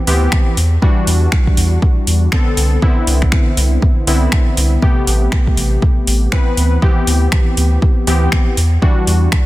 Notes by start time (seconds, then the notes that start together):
0.07 D2 E3 B3 C4 G4, open hi-hat
0.32 finger snap, kick
0.57 E2, open hi-hat
0.82 E3 G3 D4 F#4, kick
1.07 E2, open hi-hat
1.32 finger snap, kick
1.47 kick
1.57 E2, open hi-hat
1.82 kick
2.07 E2, open hi-hat
2.32 D3 B3 C4 A4, finger snap, kick
2.57 C2, open hi-hat
2.82 D3 B3 C4 E4, kick
3.07 C2, open hi-hat
3.22 finger snap, kick
3.32 finger snap, kick
3.57 C2, open hi-hat
3.82 kick
4.07 C2 D3 B3 C4 E4, open hi-hat
4.32 finger snap, kick
4.57 C2, open hi-hat
4.82 C3 A3 B3 G4, kick
5.07 A1, open hi-hat
5.32 finger snap, kick
5.47 kick
5.57 A1, open hi-hat
5.82 kick
6.07 A1, open hi-hat
6.32 E3 B3 C4 B4, finger snap, kick
6.57 D2, open hi-hat
6.82 E3 B3 C4 G4, kick
7.07 D2, open hi-hat
7.32 finger snap, kick
7.57 D2, open hi-hat
7.82 kick
8.07 D2 E3 B3 C4 G4, open hi-hat
8.32 finger snap, kick
8.57 E2, open hi-hat
8.82 E3 G3 D4 F#4, kick
9.07 E2, open hi-hat
9.32 finger snap, kick